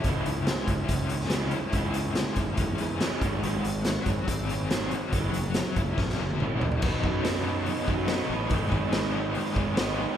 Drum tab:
CC |----------------|----------------|----------------|----------------|
HH |x-x-x-x-x-x-x-x-|x-x-x-x-x-x-x-x-|x-x-x-x-x-x-x-x-|x-x-x-x---------|
SD |----o------oo---|----o-------o---|----o-------o---|----o---oo------|
T1 |----------------|----------------|----------------|-----------o----|
T2 |----------------|----------------|----------------|------------o---|
FT |----------------|----------------|----------------|--------------oo|
BD |o-----o-o-------|o-----o-o-----o-|------o-o-------|o-----o-o-------|

CC |x---------------|----------------|
HH |----o---o---o---|o---o---o---o---|
SD |----o-------o---|----o-------o---|
T1 |----------------|----------------|
T2 |----------------|----------------|
FT |----------------|----------------|
BD |o-o-------o-----|o-o-------o-----|